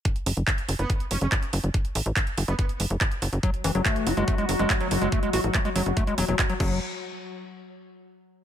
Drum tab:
CC |----------------|----------------|----------------|--------------x-|
HH |xxoxxxoxxxoxxxox|xxoxxxoxxxoxxxox|xxoxxxoxxxoxxxox|xxoxxxoxxxoxxx--|
CP |----x-------x---|----x-------x---|----x-------x---|----x-------x---|
BD |o---o---o---o---|o---o---o---o---|o---o---o---o---|o---o---o---o-o-|

CC |----------------|
HH |----------------|
CP |----------------|
BD |----------------|